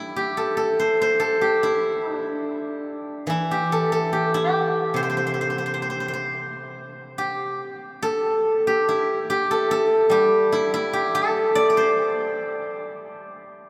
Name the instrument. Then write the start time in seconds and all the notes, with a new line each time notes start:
guzheng
Already playing: G3 E4 G4 A4
0.16 G4
0.37 A4
0.57 A4
0.79 C5
1.02 C5
1.20 A4
1.41 G4
1.63 E4
2.14 D4
3.27 E3 E4
3.51 G4
3.72 A4
3.92 A4
4.13 G4
4.34 G4
4.94 C3 C5
5.03 C5
5.10 C5
5.17 C5
5.27 C5
5.34 C5
5.41 C5
5.50 C5
5.58 C5
5.66 C5
5.74 C5
5.82 C5
5.90 C5
6.00 C5
6.08 C5
6.13 C5
7.18 G4
8.02 A4
8.67 G4
8.89 E4
9.30 G4
9.51 A4
9.71 A4
10.10 G3 G4
10.52 E4
10.74 E4
10.93 G4
11.15 A4
11.55 D5
11.70 D5
11.77 C5